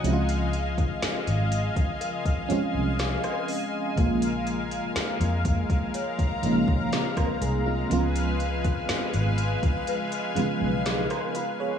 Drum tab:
HH |xxxxxxxxxxx-xxo-|xxxxxxxxxxx-xxx-|xxxxxxxxxxx-xxx-|
SD |----o-------or--|----o-------or--|----o-------or--|
BD |---o---o-o------|o-----oo-o-o-o--|---o---o--------|